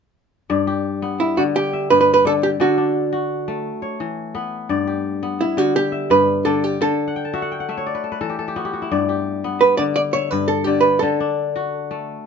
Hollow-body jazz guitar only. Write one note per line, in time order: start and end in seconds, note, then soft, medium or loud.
1.20 1.37 E4 medium
1.37 1.42 F#4 medium
1.56 1.90 G4 medium
1.90 1.99 B4 medium
2.01 2.12 B4 medium
2.14 2.24 B4 medium
2.27 2.32 A4 medium
2.43 2.48 G4 medium
2.61 3.96 F#4 medium
5.41 5.58 E4 medium
5.58 5.76 F#4 medium
5.76 6.11 G4 medium
6.11 6.46 B4 medium
6.45 6.64 A4 medium
6.64 6.81 G4 medium
6.82 8.17 A4 medium
9.61 9.77 B4 medium
9.77 9.82 D5 medium
9.96 10.01 D5 medium
10.13 10.31 C#5 medium
10.31 10.49 B4 medium
10.48 10.64 A4 medium
10.64 10.84 G4 medium
10.81 11.01 B4 medium
10.99 12.03 A4 medium